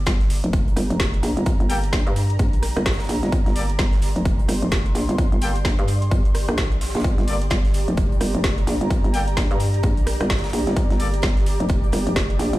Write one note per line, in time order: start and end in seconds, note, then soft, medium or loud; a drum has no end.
0.00 12.59 G4 medium
0.00 12.59 D5 medium
0.00 3.62 A#5 medium
0.06 0.42 G1 loud
0.06 kick loud
0.06 snare loud
0.06 closed hi-hat medium
0.21 snare soft
0.21 closed hi-hat soft
0.30 closed hi-hat medium
0.30 open hi-hat medium
0.44 0.75 F1 medium
0.44 closed hi-hat medium
0.53 kick loud
0.53 closed hi-hat medium
0.68 closed hi-hat soft
0.76 0.88 G1 loud
0.76 cross-stick medium
0.76 closed hi-hat medium
0.76 open hi-hat loud
0.90 1.22 F1 loud
0.90 closed hi-hat medium
1.00 kick loud
1.00 snare loud
1.00 closed hi-hat medium
1.14 closed hi-hat soft
1.23 1.35 A#1 loud
1.23 snare soft
1.23 closed hi-hat medium
1.23 open hi-hat medium
1.37 1.45 G1 medium
1.37 closed hi-hat medium
1.46 1.58 G1 medium
1.46 kick loud
1.46 closed hi-hat medium
1.60 1.91 G1 loud
1.60 closed hi-hat soft
1.70 1.77 A#3 medium
1.70 1.77 G4 medium
1.70 1.77 A4 medium
1.70 1.77 G5 medium
1.70 closed hi-hat medium
1.70 open hi-hat loud
1.83 closed hi-hat soft
1.83 closed hi-hat medium
1.93 2.05 A#1 loud
1.93 kick loud
1.93 snare loud
1.93 closed hi-hat medium
2.07 2.38 G2 medium
2.07 closed hi-hat soft
2.16 closed hi-hat medium
2.16 open hi-hat medium
2.30 closed hi-hat medium
2.39 2.74 A#1 medium
2.39 kick loud
2.39 closed hi-hat medium
2.53 closed hi-hat soft
2.63 cross-stick medium
2.63 closed hi-hat medium
2.63 open hi-hat loud
2.77 3.08 G1 loud
2.77 cross-stick medium
2.77 closed hi-hat medium
2.86 kick loud
2.86 snare medium
2.86 snare loud
2.86 closed hi-hat medium
2.92 snare medium
2.92 closed hi-hat medium
2.99 snare medium
2.99 closed hi-hat soft
2.99 closed hi-hat medium
3.04 snare medium
3.04 closed hi-hat medium
3.09 3.21 A#1 loud
3.09 snare soft
3.09 closed hi-hat medium
3.09 open hi-hat medium
3.23 3.31 G1 medium
3.23 snare soft
3.23 closed hi-hat medium
3.32 3.44 G1 medium
3.32 kick loud
3.32 closed hi-hat medium
3.46 3.77 G1 loud
3.46 snare soft
3.46 closed hi-hat soft
3.56 3.63 A#3 medium
3.56 3.63 G4 medium
3.56 3.63 A4 medium
3.56 3.63 D5 medium
3.56 7.34 C6 medium
3.56 closed hi-hat medium
3.56 open hi-hat loud
3.70 closed hi-hat medium
3.79 4.14 G1 loud
3.79 kick loud
3.79 snare loud
3.79 closed hi-hat medium
3.93 snare soft
3.93 closed hi-hat soft
4.02 closed hi-hat medium
4.02 open hi-hat medium
4.16 4.47 F1 medium
4.16 closed hi-hat soft
4.25 kick loud
4.25 closed hi-hat medium
4.39 closed hi-hat soft
4.48 4.60 G1 medium
4.48 cross-stick medium
4.48 closed hi-hat medium
4.48 open hi-hat loud
4.62 4.94 F1 loud
4.62 closed hi-hat soft
4.71 kick loud
4.71 snare loud
4.71 closed hi-hat medium
4.86 closed hi-hat soft
4.95 5.07 A#1 medium
4.95 snare soft
4.95 closed hi-hat medium
4.95 open hi-hat medium
5.09 5.17 G1 loud
5.09 closed hi-hat soft
5.18 5.30 G1 medium
5.18 kick loud
5.18 closed hi-hat medium
5.32 5.63 G1 medium
5.32 closed hi-hat soft
5.41 5.49 A#3 medium
5.41 5.49 G4 medium
5.41 5.49 A4 medium
5.41 5.49 G5 loud
5.41 closed hi-hat medium
5.41 open hi-hat loud
5.56 closed hi-hat soft
5.56 closed hi-hat medium
5.65 5.77 A#1 loud
5.65 kick loud
5.65 snare loud
5.65 closed hi-hat medium
5.79 6.10 G2 medium
5.79 closed hi-hat soft
5.88 closed hi-hat medium
5.88 open hi-hat medium
6.02 closed hi-hat soft
6.11 6.46 G1 medium
6.11 kick loud
6.11 closed hi-hat medium
6.25 closed hi-hat soft
6.35 cross-stick medium
6.35 closed hi-hat medium
6.35 open hi-hat loud
6.49 6.93 A#1 medium
6.49 cross-stick medium
6.49 closed hi-hat soft
6.58 kick loud
6.58 snare loud
6.58 closed hi-hat medium
6.72 closed hi-hat soft
6.81 snare medium
6.81 closed hi-hat medium
6.81 open hi-hat medium
6.89 snare medium
6.89 closed hi-hat medium
6.94 7.03 A#1 medium
6.94 snare medium
6.94 closed hi-hat medium
6.94 closed hi-hat soft
7.00 snare medium
7.00 closed hi-hat medium
7.04 7.16 G1 medium
7.04 kick loud
7.04 closed hi-hat medium
7.18 7.49 G1 loud
7.18 snare soft
7.18 closed hi-hat soft
7.28 7.35 A#3 medium
7.28 7.35 G4 medium
7.28 7.35 A4 medium
7.28 7.35 D5 medium
7.28 11.06 A#5 medium
7.28 closed hi-hat medium
7.28 open hi-hat loud
7.42 closed hi-hat medium
7.50 7.86 G1 loud
7.50 kick loud
7.50 snare loud
7.50 closed hi-hat medium
7.65 snare soft
7.65 closed hi-hat soft
7.74 closed hi-hat medium
7.74 open hi-hat medium
7.88 8.19 F1 medium
7.88 closed hi-hat soft
7.97 kick loud
7.97 closed hi-hat medium
8.12 closed hi-hat soft
8.21 8.32 G1 medium
8.21 cross-stick medium
8.21 closed hi-hat medium
8.21 open hi-hat loud
8.35 8.66 F1 loud
8.35 closed hi-hat soft
8.44 kick loud
8.44 snare loud
8.44 closed hi-hat medium
8.58 closed hi-hat soft
8.67 8.79 A#1 loud
8.67 snare soft
8.67 closed hi-hat medium
8.67 open hi-hat medium
8.81 8.89 G1 medium
8.81 closed hi-hat medium
8.90 9.02 G1 medium
8.90 kick loud
8.90 closed hi-hat medium
9.04 9.36 G1 loud
9.04 closed hi-hat soft
9.14 9.21 A#3 medium
9.14 9.21 G4 medium
9.14 9.21 A4 medium
9.14 9.21 G5 loud
9.14 closed hi-hat medium
9.14 open hi-hat loud
9.27 closed hi-hat soft
9.27 closed hi-hat medium
9.37 9.49 A#1 loud
9.37 kick loud
9.37 snare loud
9.37 closed hi-hat medium
9.51 9.82 G2 medium
9.51 closed hi-hat soft
9.60 closed hi-hat medium
9.60 open hi-hat medium
9.74 closed hi-hat soft
9.83 10.18 A#1 medium
9.83 kick loud
9.83 closed hi-hat medium
9.97 closed hi-hat soft
10.07 cross-stick medium
10.07 closed hi-hat medium
10.07 open hi-hat loud
10.21 10.52 G1 loud
10.21 cross-stick medium
10.21 closed hi-hat soft
10.30 kick loud
10.30 snare medium
10.30 snare loud
10.30 closed hi-hat medium
10.37 snare medium
10.37 closed hi-hat medium
10.44 snare medium
10.44 closed hi-hat medium
10.44 closed hi-hat soft
10.49 snare medium
10.49 closed hi-hat medium
10.53 10.65 A#1 loud
10.53 snare soft
10.53 closed hi-hat medium
10.53 open hi-hat medium
10.67 10.75 G1 loud
10.67 snare soft
10.67 closed hi-hat medium
10.76 10.88 G1 loud
10.76 kick loud
10.76 closed hi-hat medium
10.90 11.22 G1 loud
10.90 snare soft
10.90 closed hi-hat soft
10.99 11.07 A#3 medium
10.99 11.07 G4 medium
10.99 11.07 A4 medium
10.99 11.07 D5 medium
10.99 12.59 D6 medium
10.99 closed hi-hat medium
10.99 open hi-hat loud
11.14 closed hi-hat medium
11.22 11.58 G1 loud
11.22 kick medium
11.22 snare loud
11.22 closed hi-hat medium
11.37 snare soft
11.37 closed hi-hat soft
11.46 closed hi-hat medium
11.46 open hi-hat medium
11.60 11.91 F1 loud
11.60 closed hi-hat medium
11.69 kick loud
11.69 closed hi-hat medium
11.84 closed hi-hat soft
11.92 12.05 G1 loud
11.92 cross-stick medium
11.92 closed hi-hat medium
11.92 open hi-hat loud
12.07 12.38 F1 loud
12.07 closed hi-hat medium
12.16 kick medium
12.16 snare loud
12.16 closed hi-hat medium
12.30 closed hi-hat soft
12.39 12.51 A#1 loud
12.39 snare soft
12.39 closed hi-hat medium
12.39 open hi-hat medium
12.53 12.59 G1 loud
12.53 closed hi-hat medium